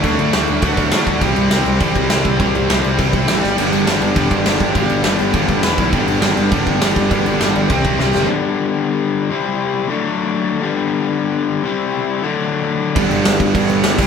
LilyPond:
<<
  \new Staff \with { instrumentName = "Distorted electric guitar" } { \time 4/4 \key g \major \tempo 4 = 204 <d fis a d' fis'>4 <d fis a d' fis'>4 <d fis a d' fis'>4 <d fis a d' fis'>4 | <c g c' e' g'>4 <c g c' e' g'>4 <c g c' e' g'>4 <c g c' e' g'>4 | <c g c' e' g'>4 <c g c' e' g'>4 <c g c' e' g'>4 <c g c' e' g'>8 r8 | <g, d g b d' g'>4 <g, d g b d' g'>4 <g, d g b d' g'>4 <g, d g b d' g'>4 |
<g, d g b d' g'>4 <g, d g b d' g'>4 <g, d g b d' g'>4 <e b e' b'>4 | <g, d g b d' g'>4 <g, d g b d' g'>4 <g, d g b d' g'>4 <g, d g b d' g'>4 | <g, d g b d' g'>4 <g, d g b d' g'>4 <c g c' g'>4 <c g c' g'>4 | <g, d g b d'>2.~ <g, d g b d'>8 <c g c' e'>8~ |
<c g c' e'>4. <d fis a d'>2~ <d fis a d'>8 | <g, d g b d'>2.~ <g, d g b d'>8 <c g c' e'>8~ | <c g c' e'>4. <d fis a d'>2~ <d fis a d'>8 | <g, d g b d'>2.~ <g, d g b d'>8 <c g c' e'>8 | }
  \new Staff \with { instrumentName = "Overdriven electric guitar" } { \clef bass \time 4/4 \key g \major <d a d'>4 <d a d'>4 <d a d'>4 <d a d'>4 | <c g c'>4 <c g c'>4 <c g c'>4 <c g c'>4 | <c g c'>4 <c g c'>4 <c g c'>4 <c g c'>8 r8 | <g, d g>4 <g, d g>4 <g, d g>4 <g, d g>4 |
<g, d g>4 <g, d g>4 <g, d g>4 <e, b, e>4 | <g, d g>4 <g, d g>4 <g, d g>4 <g, d g>4 | <g, d g>4 <g, d g>4 <c g c'>4 <c g c'>4 | r1 |
r1 | r1 | r1 | <g, d g>2.~ <g, d g>8 <c g c'>8 | }
  \new Staff \with { instrumentName = "Picked electric bass" } { \clef bass \time 4/4 \key g \major d,8 d,8 d,8 d,8 d,8 d,8 a,8 d,8 | c,8 c,8 c,8 c,8 a,,8 c,8 c,8 c,8 | c,8 c,8 c,8 c,8 c,8 c,8 a,,8 g,,8 | g,,8 g,,8 g,,8 g,,8 e,,8 g,,8 g,,8 g,,8 |
g,,8 g,,8 g,,8 g,,8 g,,8 g,,8 e,,8 b,,8 | g,,8 g,,8 g,,8 g,,8 e,,8 g,,8 g,,8 g,,8 | g,,8 g,,8 g,,8 g,,8 c,8 c,8 c,8 fis,,8 | r1 |
r1 | r1 | r1 | g,,8 g,,8 g,,8 g,,8 g,,8 g,,8 g,,8 c,8 | }
  \new DrumStaff \with { instrumentName = "Drums" } \drummode { \time 4/4 <cymc bd>8 cymc8 <cymc sn>8 cymc8 <cymc bd>8 <cymc bd>8 <cymc sn>8 <cymc bd>8 | <cymc bd>8 cymc8 <cymc sn>8 cymc8 <cymc bd>8 <cymc bd>8 <cymc sn>8 <cymc bd>8 | <cymc bd>8 cymc8 <cymc sn>8 cymc8 <cymc bd>8 <cymc bd>8 <cymc sn>8 sn8 | cymc8 cymc8 <cymc sn>8 cymc8 <cymc bd>8 <cymc bd>8 <cymc sn>8 <cymc bd>8 |
<cymc bd>8 cymc8 <cymc sn>8 cymc8 <cymc bd>8 <cymc bd>8 <cymc sn>8 <cymc bd>8 | <cymc bd>8 cymc8 <cymc sn>8 cymc8 <cymc bd>8 <cymc bd>8 <cymc sn>8 <cymc bd>8 | <cymc bd>8 cymc8 <cymc sn>8 cymc8 <cymc bd>8 <cymc bd>8 sn8 sn8 | r4 r4 r4 r4 |
r4 r4 r4 r4 | r4 r4 r4 r4 | r4 r4 r4 r4 | <cymc bd>8 cymc8 <cymc sn>8 <cymc bd>8 <cymc bd>8 cymc8 <cymc sn>8 <cymc bd>8 | }
>>